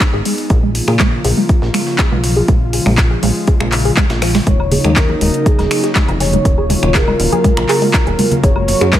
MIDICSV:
0, 0, Header, 1, 6, 480
1, 0, Start_track
1, 0, Tempo, 495868
1, 487, Time_signature, 4, 2, 24, 8
1, 8709, End_track
2, 0, Start_track
2, 0, Title_t, "Soft synth lead"
2, 0, Program_c, 0, 80
2, 4327, Note_on_c, 0, 73, 104
2, 4760, Note_off_c, 0, 73, 0
2, 4808, Note_on_c, 0, 70, 89
2, 5288, Note_on_c, 0, 68, 98
2, 5303, Note_off_c, 0, 70, 0
2, 5914, Note_off_c, 0, 68, 0
2, 6007, Note_on_c, 0, 73, 92
2, 6727, Note_on_c, 0, 70, 102
2, 6742, Note_off_c, 0, 73, 0
2, 8074, Note_off_c, 0, 70, 0
2, 8167, Note_on_c, 0, 73, 106
2, 8647, Note_on_c, 0, 70, 90
2, 8661, Note_off_c, 0, 73, 0
2, 8709, Note_off_c, 0, 70, 0
2, 8709, End_track
3, 0, Start_track
3, 0, Title_t, "Analog synth pad"
3, 0, Program_c, 1, 89
3, 0, Note_on_c, 1, 56, 73
3, 0, Note_on_c, 1, 59, 83
3, 0, Note_on_c, 1, 63, 72
3, 0, Note_on_c, 1, 68, 92
3, 447, Note_off_c, 1, 63, 0
3, 448, Note_off_c, 1, 56, 0
3, 448, Note_off_c, 1, 59, 0
3, 448, Note_off_c, 1, 68, 0
3, 486, Note_on_c, 1, 58, 75
3, 487, Note_on_c, 1, 49, 87
3, 487, Note_on_c, 1, 53, 75
3, 487, Note_on_c, 1, 65, 92
3, 2387, Note_off_c, 1, 58, 0
3, 2405, Note_on_c, 1, 56, 77
3, 4288, Note_off_c, 1, 53, 0
3, 4288, Note_off_c, 1, 65, 0
3, 4307, Note_off_c, 1, 56, 0
3, 4326, Note_on_c, 1, 54, 77
3, 4327, Note_on_c, 1, 58, 76
3, 4327, Note_on_c, 1, 63, 91
3, 6228, Note_off_c, 1, 63, 0
3, 6243, Note_on_c, 1, 65, 94
3, 8146, Note_off_c, 1, 65, 0
3, 8166, Note_on_c, 1, 66, 91
3, 8709, Note_off_c, 1, 49, 0
3, 8709, Note_off_c, 1, 54, 0
3, 8709, Note_off_c, 1, 58, 0
3, 8709, Note_off_c, 1, 66, 0
3, 8709, End_track
4, 0, Start_track
4, 0, Title_t, "Synth arpeggio sound"
4, 0, Program_c, 2, 84
4, 131, Note_on_c, 2, 68, 72
4, 194, Note_off_c, 2, 68, 0
4, 247, Note_on_c, 2, 56, 74
4, 315, Note_off_c, 2, 56, 0
4, 486, Note_on_c, 2, 68, 76
4, 554, Note_off_c, 2, 68, 0
4, 610, Note_on_c, 2, 56, 73
4, 674, Note_off_c, 2, 56, 0
4, 850, Note_on_c, 2, 68, 76
4, 914, Note_off_c, 2, 68, 0
4, 966, Note_on_c, 2, 56, 80
4, 1034, Note_off_c, 2, 56, 0
4, 1206, Note_on_c, 2, 68, 76
4, 1274, Note_off_c, 2, 68, 0
4, 1330, Note_on_c, 2, 56, 74
4, 1394, Note_off_c, 2, 56, 0
4, 1569, Note_on_c, 2, 68, 73
4, 1633, Note_off_c, 2, 68, 0
4, 1685, Note_on_c, 2, 56, 81
4, 1754, Note_off_c, 2, 56, 0
4, 1924, Note_on_c, 2, 68, 76
4, 1993, Note_off_c, 2, 68, 0
4, 2048, Note_on_c, 2, 56, 69
4, 2113, Note_off_c, 2, 56, 0
4, 2288, Note_on_c, 2, 68, 78
4, 2353, Note_off_c, 2, 68, 0
4, 2404, Note_on_c, 2, 56, 84
4, 2473, Note_off_c, 2, 56, 0
4, 2644, Note_on_c, 2, 68, 72
4, 2713, Note_off_c, 2, 68, 0
4, 2768, Note_on_c, 2, 56, 77
4, 2833, Note_off_c, 2, 56, 0
4, 3008, Note_on_c, 2, 68, 70
4, 3073, Note_off_c, 2, 68, 0
4, 3124, Note_on_c, 2, 56, 75
4, 3193, Note_off_c, 2, 56, 0
4, 3364, Note_on_c, 2, 68, 77
4, 3433, Note_off_c, 2, 68, 0
4, 3489, Note_on_c, 2, 56, 76
4, 3553, Note_off_c, 2, 56, 0
4, 3729, Note_on_c, 2, 68, 78
4, 3793, Note_off_c, 2, 68, 0
4, 3846, Note_on_c, 2, 56, 101
4, 3914, Note_off_c, 2, 56, 0
4, 4085, Note_on_c, 2, 53, 101
4, 4188, Note_off_c, 2, 53, 0
4, 4209, Note_on_c, 2, 56, 78
4, 4248, Note_off_c, 2, 56, 0
4, 4326, Note_on_c, 2, 56, 79
4, 4394, Note_off_c, 2, 56, 0
4, 4567, Note_on_c, 2, 68, 72
4, 4634, Note_off_c, 2, 68, 0
4, 4690, Note_on_c, 2, 56, 72
4, 4754, Note_off_c, 2, 56, 0
4, 4930, Note_on_c, 2, 68, 71
4, 4994, Note_off_c, 2, 68, 0
4, 5046, Note_on_c, 2, 56, 79
4, 5114, Note_off_c, 2, 56, 0
4, 5286, Note_on_c, 2, 68, 80
4, 5354, Note_off_c, 2, 68, 0
4, 5409, Note_on_c, 2, 56, 75
4, 5473, Note_off_c, 2, 56, 0
4, 5650, Note_on_c, 2, 68, 75
4, 5714, Note_off_c, 2, 68, 0
4, 5766, Note_on_c, 2, 56, 78
4, 5834, Note_off_c, 2, 56, 0
4, 6006, Note_on_c, 2, 68, 79
4, 6074, Note_off_c, 2, 68, 0
4, 6130, Note_on_c, 2, 56, 79
4, 6194, Note_off_c, 2, 56, 0
4, 6369, Note_on_c, 2, 68, 74
4, 6434, Note_off_c, 2, 68, 0
4, 6487, Note_on_c, 2, 56, 75
4, 6555, Note_off_c, 2, 56, 0
4, 6726, Note_on_c, 2, 68, 86
4, 6794, Note_off_c, 2, 68, 0
4, 6849, Note_on_c, 2, 56, 77
4, 6914, Note_off_c, 2, 56, 0
4, 7090, Note_on_c, 2, 68, 79
4, 7154, Note_off_c, 2, 68, 0
4, 7206, Note_on_c, 2, 56, 78
4, 7274, Note_off_c, 2, 56, 0
4, 7445, Note_on_c, 2, 68, 76
4, 7514, Note_off_c, 2, 68, 0
4, 7569, Note_on_c, 2, 56, 77
4, 7633, Note_off_c, 2, 56, 0
4, 7809, Note_on_c, 2, 68, 74
4, 7873, Note_off_c, 2, 68, 0
4, 7924, Note_on_c, 2, 56, 74
4, 7993, Note_off_c, 2, 56, 0
4, 8164, Note_on_c, 2, 68, 81
4, 8233, Note_off_c, 2, 68, 0
4, 8288, Note_on_c, 2, 56, 76
4, 8353, Note_off_c, 2, 56, 0
4, 8529, Note_on_c, 2, 68, 75
4, 8593, Note_off_c, 2, 68, 0
4, 8645, Note_on_c, 2, 56, 86
4, 8709, Note_off_c, 2, 56, 0
4, 8709, End_track
5, 0, Start_track
5, 0, Title_t, "Analog synth bass"
5, 0, Program_c, 3, 38
5, 130, Note_on_c, 3, 32, 82
5, 211, Note_off_c, 3, 32, 0
5, 485, Note_on_c, 3, 34, 104
5, 789, Note_off_c, 3, 34, 0
5, 849, Note_on_c, 3, 46, 77
5, 1149, Note_off_c, 3, 46, 0
5, 1206, Note_on_c, 3, 34, 94
5, 1292, Note_off_c, 3, 34, 0
5, 1569, Note_on_c, 3, 34, 96
5, 1651, Note_off_c, 3, 34, 0
5, 2048, Note_on_c, 3, 35, 91
5, 2349, Note_off_c, 3, 35, 0
5, 2405, Note_on_c, 3, 34, 82
5, 2709, Note_off_c, 3, 34, 0
5, 2769, Note_on_c, 3, 34, 100
5, 3069, Note_off_c, 3, 34, 0
5, 3125, Note_on_c, 3, 34, 96
5, 3212, Note_off_c, 3, 34, 0
5, 3490, Note_on_c, 3, 34, 97
5, 3790, Note_off_c, 3, 34, 0
5, 3970, Note_on_c, 3, 34, 87
5, 4270, Note_off_c, 3, 34, 0
5, 4326, Note_on_c, 3, 27, 100
5, 4629, Note_off_c, 3, 27, 0
5, 4690, Note_on_c, 3, 39, 83
5, 4990, Note_off_c, 3, 39, 0
5, 5046, Note_on_c, 3, 27, 91
5, 5132, Note_off_c, 3, 27, 0
5, 5411, Note_on_c, 3, 27, 92
5, 5491, Note_off_c, 3, 27, 0
5, 5890, Note_on_c, 3, 29, 96
5, 6190, Note_off_c, 3, 29, 0
5, 6246, Note_on_c, 3, 27, 80
5, 6550, Note_off_c, 3, 27, 0
5, 6610, Note_on_c, 3, 27, 96
5, 6910, Note_off_c, 3, 27, 0
5, 6966, Note_on_c, 3, 27, 96
5, 7053, Note_off_c, 3, 27, 0
5, 7329, Note_on_c, 3, 34, 86
5, 7411, Note_off_c, 3, 34, 0
5, 7809, Note_on_c, 3, 27, 85
5, 7891, Note_off_c, 3, 27, 0
5, 8165, Note_on_c, 3, 30, 97
5, 8469, Note_off_c, 3, 30, 0
5, 8530, Note_on_c, 3, 42, 84
5, 8709, Note_off_c, 3, 42, 0
5, 8709, End_track
6, 0, Start_track
6, 0, Title_t, "Drums"
6, 3, Note_on_c, 9, 39, 119
6, 5, Note_on_c, 9, 36, 117
6, 5, Note_on_c, 9, 38, 109
6, 5, Note_on_c, 9, 42, 85
6, 100, Note_off_c, 9, 39, 0
6, 102, Note_off_c, 9, 36, 0
6, 102, Note_off_c, 9, 38, 0
6, 102, Note_off_c, 9, 42, 0
6, 246, Note_on_c, 9, 42, 67
6, 247, Note_on_c, 9, 46, 108
6, 342, Note_off_c, 9, 42, 0
6, 343, Note_off_c, 9, 46, 0
6, 369, Note_on_c, 9, 42, 43
6, 466, Note_off_c, 9, 42, 0
6, 484, Note_on_c, 9, 42, 87
6, 485, Note_on_c, 9, 36, 126
6, 581, Note_off_c, 9, 42, 0
6, 582, Note_off_c, 9, 36, 0
6, 725, Note_on_c, 9, 42, 69
6, 726, Note_on_c, 9, 46, 105
6, 822, Note_off_c, 9, 42, 0
6, 823, Note_off_c, 9, 46, 0
6, 850, Note_on_c, 9, 26, 59
6, 947, Note_off_c, 9, 26, 0
6, 962, Note_on_c, 9, 39, 112
6, 965, Note_on_c, 9, 36, 118
6, 965, Note_on_c, 9, 38, 114
6, 965, Note_on_c, 9, 42, 89
6, 1059, Note_off_c, 9, 39, 0
6, 1061, Note_off_c, 9, 38, 0
6, 1061, Note_off_c, 9, 42, 0
6, 1062, Note_off_c, 9, 36, 0
6, 1205, Note_on_c, 9, 42, 69
6, 1205, Note_on_c, 9, 46, 108
6, 1301, Note_off_c, 9, 42, 0
6, 1302, Note_off_c, 9, 46, 0
6, 1445, Note_on_c, 9, 36, 121
6, 1445, Note_on_c, 9, 42, 87
6, 1541, Note_off_c, 9, 42, 0
6, 1542, Note_off_c, 9, 36, 0
6, 1569, Note_on_c, 9, 38, 37
6, 1666, Note_off_c, 9, 38, 0
6, 1684, Note_on_c, 9, 42, 65
6, 1685, Note_on_c, 9, 26, 77
6, 1685, Note_on_c, 9, 46, 112
6, 1781, Note_off_c, 9, 42, 0
6, 1782, Note_off_c, 9, 26, 0
6, 1782, Note_off_c, 9, 46, 0
6, 1808, Note_on_c, 9, 38, 50
6, 1905, Note_off_c, 9, 38, 0
6, 1921, Note_on_c, 9, 39, 115
6, 1924, Note_on_c, 9, 38, 114
6, 1924, Note_on_c, 9, 42, 90
6, 1925, Note_on_c, 9, 36, 120
6, 2018, Note_off_c, 9, 39, 0
6, 2021, Note_off_c, 9, 38, 0
6, 2021, Note_off_c, 9, 42, 0
6, 2022, Note_off_c, 9, 36, 0
6, 2165, Note_on_c, 9, 38, 43
6, 2165, Note_on_c, 9, 42, 66
6, 2165, Note_on_c, 9, 46, 107
6, 2261, Note_off_c, 9, 38, 0
6, 2261, Note_off_c, 9, 42, 0
6, 2262, Note_off_c, 9, 46, 0
6, 2404, Note_on_c, 9, 42, 87
6, 2405, Note_on_c, 9, 36, 115
6, 2501, Note_off_c, 9, 36, 0
6, 2501, Note_off_c, 9, 42, 0
6, 2644, Note_on_c, 9, 42, 66
6, 2645, Note_on_c, 9, 46, 112
6, 2741, Note_off_c, 9, 42, 0
6, 2742, Note_off_c, 9, 46, 0
6, 2769, Note_on_c, 9, 26, 58
6, 2866, Note_off_c, 9, 26, 0
6, 2881, Note_on_c, 9, 39, 111
6, 2884, Note_on_c, 9, 38, 118
6, 2884, Note_on_c, 9, 42, 84
6, 2885, Note_on_c, 9, 36, 116
6, 2978, Note_off_c, 9, 39, 0
6, 2980, Note_off_c, 9, 38, 0
6, 2980, Note_off_c, 9, 42, 0
6, 2981, Note_off_c, 9, 36, 0
6, 3124, Note_on_c, 9, 42, 70
6, 3125, Note_on_c, 9, 46, 105
6, 3221, Note_off_c, 9, 42, 0
6, 3222, Note_off_c, 9, 46, 0
6, 3363, Note_on_c, 9, 42, 86
6, 3365, Note_on_c, 9, 36, 117
6, 3460, Note_off_c, 9, 42, 0
6, 3462, Note_off_c, 9, 36, 0
6, 3489, Note_on_c, 9, 26, 78
6, 3586, Note_off_c, 9, 26, 0
6, 3602, Note_on_c, 9, 39, 56
6, 3605, Note_on_c, 9, 42, 61
6, 3605, Note_on_c, 9, 46, 103
6, 3698, Note_off_c, 9, 39, 0
6, 3702, Note_off_c, 9, 42, 0
6, 3702, Note_off_c, 9, 46, 0
6, 3729, Note_on_c, 9, 46, 64
6, 3826, Note_off_c, 9, 46, 0
6, 3841, Note_on_c, 9, 39, 114
6, 3845, Note_on_c, 9, 36, 126
6, 3845, Note_on_c, 9, 38, 104
6, 3845, Note_on_c, 9, 42, 76
6, 3938, Note_off_c, 9, 39, 0
6, 3942, Note_off_c, 9, 36, 0
6, 3942, Note_off_c, 9, 38, 0
6, 3942, Note_off_c, 9, 42, 0
6, 3968, Note_on_c, 9, 38, 105
6, 3968, Note_on_c, 9, 42, 77
6, 4065, Note_off_c, 9, 38, 0
6, 4065, Note_off_c, 9, 42, 0
6, 4084, Note_on_c, 9, 38, 102
6, 4084, Note_on_c, 9, 42, 78
6, 4086, Note_on_c, 9, 26, 77
6, 4086, Note_on_c, 9, 46, 108
6, 4181, Note_off_c, 9, 38, 0
6, 4181, Note_off_c, 9, 42, 0
6, 4183, Note_off_c, 9, 26, 0
6, 4183, Note_off_c, 9, 46, 0
6, 4209, Note_on_c, 9, 38, 106
6, 4209, Note_on_c, 9, 42, 73
6, 4305, Note_off_c, 9, 38, 0
6, 4305, Note_off_c, 9, 42, 0
6, 4324, Note_on_c, 9, 42, 86
6, 4325, Note_on_c, 9, 36, 115
6, 4326, Note_off_c, 9, 42, 0
6, 4326, Note_on_c, 9, 42, 79
6, 4422, Note_off_c, 9, 36, 0
6, 4422, Note_off_c, 9, 42, 0
6, 4451, Note_on_c, 9, 76, 66
6, 4548, Note_off_c, 9, 76, 0
6, 4563, Note_on_c, 9, 64, 90
6, 4564, Note_on_c, 9, 42, 66
6, 4566, Note_on_c, 9, 46, 103
6, 4660, Note_off_c, 9, 64, 0
6, 4661, Note_off_c, 9, 42, 0
6, 4663, Note_off_c, 9, 46, 0
6, 4690, Note_on_c, 9, 26, 63
6, 4690, Note_on_c, 9, 42, 47
6, 4787, Note_off_c, 9, 26, 0
6, 4787, Note_off_c, 9, 42, 0
6, 4803, Note_on_c, 9, 39, 105
6, 4805, Note_on_c, 9, 36, 113
6, 4805, Note_on_c, 9, 38, 117
6, 4805, Note_on_c, 9, 42, 92
6, 4806, Note_off_c, 9, 42, 0
6, 4806, Note_on_c, 9, 42, 76
6, 4899, Note_off_c, 9, 39, 0
6, 4902, Note_off_c, 9, 36, 0
6, 4902, Note_off_c, 9, 38, 0
6, 4903, Note_off_c, 9, 42, 0
6, 4927, Note_on_c, 9, 63, 53
6, 4932, Note_on_c, 9, 76, 36
6, 5024, Note_off_c, 9, 63, 0
6, 5028, Note_off_c, 9, 76, 0
6, 5046, Note_on_c, 9, 42, 70
6, 5046, Note_on_c, 9, 46, 105
6, 5142, Note_off_c, 9, 42, 0
6, 5142, Note_off_c, 9, 46, 0
6, 5170, Note_on_c, 9, 42, 49
6, 5267, Note_off_c, 9, 42, 0
6, 5286, Note_on_c, 9, 36, 116
6, 5286, Note_on_c, 9, 42, 71
6, 5382, Note_off_c, 9, 36, 0
6, 5383, Note_off_c, 9, 42, 0
6, 5407, Note_on_c, 9, 76, 70
6, 5410, Note_on_c, 9, 38, 38
6, 5410, Note_on_c, 9, 42, 35
6, 5503, Note_off_c, 9, 76, 0
6, 5507, Note_off_c, 9, 38, 0
6, 5507, Note_off_c, 9, 42, 0
6, 5526, Note_on_c, 9, 42, 63
6, 5527, Note_on_c, 9, 26, 85
6, 5527, Note_on_c, 9, 46, 99
6, 5623, Note_off_c, 9, 42, 0
6, 5624, Note_off_c, 9, 26, 0
6, 5624, Note_off_c, 9, 46, 0
6, 5650, Note_on_c, 9, 38, 49
6, 5651, Note_on_c, 9, 42, 50
6, 5747, Note_off_c, 9, 38, 0
6, 5747, Note_off_c, 9, 42, 0
6, 5763, Note_on_c, 9, 39, 108
6, 5765, Note_on_c, 9, 36, 114
6, 5766, Note_on_c, 9, 38, 115
6, 5766, Note_on_c, 9, 42, 84
6, 5767, Note_off_c, 9, 42, 0
6, 5767, Note_on_c, 9, 42, 68
6, 5860, Note_off_c, 9, 39, 0
6, 5862, Note_off_c, 9, 36, 0
6, 5862, Note_off_c, 9, 38, 0
6, 5863, Note_off_c, 9, 42, 0
6, 5887, Note_on_c, 9, 76, 73
6, 5890, Note_on_c, 9, 42, 36
6, 5983, Note_off_c, 9, 76, 0
6, 5987, Note_off_c, 9, 42, 0
6, 6006, Note_on_c, 9, 38, 41
6, 6006, Note_on_c, 9, 42, 68
6, 6006, Note_on_c, 9, 46, 102
6, 6102, Note_off_c, 9, 38, 0
6, 6102, Note_off_c, 9, 42, 0
6, 6103, Note_off_c, 9, 46, 0
6, 6128, Note_on_c, 9, 64, 83
6, 6130, Note_on_c, 9, 42, 47
6, 6225, Note_off_c, 9, 64, 0
6, 6227, Note_off_c, 9, 42, 0
6, 6245, Note_on_c, 9, 36, 111
6, 6246, Note_on_c, 9, 42, 76
6, 6342, Note_off_c, 9, 36, 0
6, 6343, Note_off_c, 9, 42, 0
6, 6367, Note_on_c, 9, 76, 36
6, 6463, Note_off_c, 9, 76, 0
6, 6482, Note_on_c, 9, 64, 86
6, 6486, Note_on_c, 9, 42, 69
6, 6486, Note_on_c, 9, 46, 96
6, 6579, Note_off_c, 9, 64, 0
6, 6583, Note_off_c, 9, 42, 0
6, 6583, Note_off_c, 9, 46, 0
6, 6610, Note_on_c, 9, 26, 63
6, 6707, Note_off_c, 9, 26, 0
6, 6723, Note_on_c, 9, 39, 103
6, 6725, Note_on_c, 9, 36, 107
6, 6726, Note_on_c, 9, 38, 117
6, 6726, Note_on_c, 9, 42, 78
6, 6820, Note_off_c, 9, 39, 0
6, 6822, Note_off_c, 9, 36, 0
6, 6823, Note_off_c, 9, 38, 0
6, 6823, Note_off_c, 9, 42, 0
6, 6850, Note_on_c, 9, 76, 76
6, 6946, Note_off_c, 9, 76, 0
6, 6966, Note_on_c, 9, 42, 72
6, 6966, Note_on_c, 9, 46, 106
6, 7063, Note_off_c, 9, 42, 0
6, 7063, Note_off_c, 9, 46, 0
6, 7090, Note_on_c, 9, 42, 49
6, 7092, Note_on_c, 9, 63, 81
6, 7187, Note_off_c, 9, 42, 0
6, 7189, Note_off_c, 9, 63, 0
6, 7205, Note_on_c, 9, 36, 107
6, 7205, Note_on_c, 9, 42, 80
6, 7206, Note_off_c, 9, 42, 0
6, 7206, Note_on_c, 9, 42, 88
6, 7302, Note_off_c, 9, 36, 0
6, 7303, Note_off_c, 9, 42, 0
6, 7329, Note_on_c, 9, 26, 82
6, 7329, Note_on_c, 9, 42, 37
6, 7332, Note_on_c, 9, 76, 68
6, 7426, Note_off_c, 9, 26, 0
6, 7426, Note_off_c, 9, 42, 0
6, 7428, Note_off_c, 9, 76, 0
6, 7442, Note_on_c, 9, 39, 57
6, 7446, Note_on_c, 9, 46, 99
6, 7447, Note_on_c, 9, 42, 66
6, 7539, Note_off_c, 9, 39, 0
6, 7543, Note_off_c, 9, 46, 0
6, 7544, Note_off_c, 9, 42, 0
6, 7570, Note_on_c, 9, 46, 58
6, 7667, Note_off_c, 9, 46, 0
6, 7683, Note_on_c, 9, 39, 108
6, 7685, Note_on_c, 9, 36, 114
6, 7686, Note_on_c, 9, 38, 113
6, 7686, Note_on_c, 9, 42, 87
6, 7780, Note_off_c, 9, 39, 0
6, 7782, Note_off_c, 9, 36, 0
6, 7782, Note_off_c, 9, 38, 0
6, 7782, Note_off_c, 9, 42, 0
6, 7808, Note_on_c, 9, 76, 32
6, 7810, Note_on_c, 9, 42, 37
6, 7905, Note_off_c, 9, 76, 0
6, 7907, Note_off_c, 9, 42, 0
6, 7926, Note_on_c, 9, 42, 68
6, 7927, Note_on_c, 9, 46, 100
6, 7927, Note_on_c, 9, 64, 83
6, 8023, Note_off_c, 9, 42, 0
6, 8023, Note_off_c, 9, 46, 0
6, 8024, Note_off_c, 9, 64, 0
6, 8048, Note_on_c, 9, 64, 80
6, 8049, Note_on_c, 9, 42, 44
6, 8051, Note_off_c, 9, 42, 0
6, 8051, Note_on_c, 9, 42, 49
6, 8145, Note_off_c, 9, 64, 0
6, 8147, Note_off_c, 9, 42, 0
6, 8165, Note_on_c, 9, 36, 113
6, 8165, Note_on_c, 9, 42, 91
6, 8167, Note_off_c, 9, 42, 0
6, 8167, Note_on_c, 9, 42, 86
6, 8262, Note_off_c, 9, 36, 0
6, 8264, Note_off_c, 9, 42, 0
6, 8284, Note_on_c, 9, 76, 81
6, 8380, Note_off_c, 9, 76, 0
6, 8401, Note_on_c, 9, 64, 97
6, 8405, Note_on_c, 9, 42, 67
6, 8407, Note_on_c, 9, 46, 102
6, 8498, Note_off_c, 9, 64, 0
6, 8502, Note_off_c, 9, 42, 0
6, 8504, Note_off_c, 9, 46, 0
6, 8531, Note_on_c, 9, 26, 62
6, 8531, Note_on_c, 9, 42, 50
6, 8628, Note_off_c, 9, 26, 0
6, 8628, Note_off_c, 9, 42, 0
6, 8643, Note_on_c, 9, 39, 115
6, 8645, Note_on_c, 9, 36, 113
6, 8646, Note_on_c, 9, 38, 116
6, 8646, Note_on_c, 9, 42, 91
6, 8647, Note_off_c, 9, 42, 0
6, 8647, Note_on_c, 9, 42, 80
6, 8709, Note_off_c, 9, 36, 0
6, 8709, Note_off_c, 9, 38, 0
6, 8709, Note_off_c, 9, 39, 0
6, 8709, Note_off_c, 9, 42, 0
6, 8709, End_track
0, 0, End_of_file